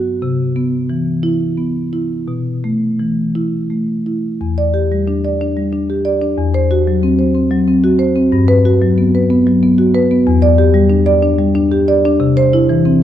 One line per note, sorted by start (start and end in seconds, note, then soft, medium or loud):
0.00 0.19 G2 medium
0.00 0.23 F#4 medium
0.22 2.24 C3 medium
0.56 1.10 B3 medium
0.90 1.44 E3 medium
1.23 1.79 E4 medium
1.58 2.14 B3 soft
1.93 2.28 E4 medium
2.28 4.37 B2 medium
2.64 3.21 A3 medium
2.99 3.56 E3 soft
3.35 3.93 E4 medium
3.70 4.27 A3 soft
4.06 4.41 E4 medium
4.41 6.35 E2 medium
4.58 4.85 D5 medium
4.74 5.01 G4 medium
4.92 5.18 G3 medium
5.08 5.34 D4 medium
5.25 5.51 D5 medium
5.41 5.67 D4 medium
5.57 5.83 G3 medium
5.73 5.99 D4 medium
5.90 6.16 G4 medium
6.05 6.32 D5 medium
6.21 6.38 D4 medium
6.38 8.29 E2 medium
6.54 6.81 C5 medium
6.71 6.97 F#4 medium
6.87 7.13 F#3 medium
7.03 7.29 C4 medium
7.19 7.45 C5 medium
7.35 7.61 C4 medium
7.51 7.78 F#3 medium
7.68 7.94 C4 medium
7.84 8.10 F#4 medium
7.99 8.26 C5 medium
8.16 8.33 C4 medium
8.32 10.23 G2 medium
8.48 8.76 B4 loud
8.65 8.92 F#4 medium
8.82 9.08 F#3 medium
8.98 9.24 B3 medium
9.15 9.41 B4 medium
9.30 9.57 B3 medium
9.47 9.73 F#3 medium
9.63 9.89 B3 medium
9.78 10.05 F#4 medium
9.95 10.21 B4 medium
10.11 10.27 B3 medium
10.27 12.16 E2 loud
10.42 10.68 D5 loud
10.58 10.84 G4 medium
10.74 11.00 G3 medium
10.90 11.16 D4 medium
11.06 11.32 D5 loud
11.22 11.49 D4 medium
11.39 11.65 G3 medium
11.55 11.81 D4 medium
11.72 11.97 G4 medium
11.88 12.14 D5 loud
12.05 12.21 D4 medium
12.20 13.03 C3 loud
12.37 12.62 C5 loud
12.53 12.79 E4 medium
12.69 12.95 E3 medium
12.85 13.03 C4 medium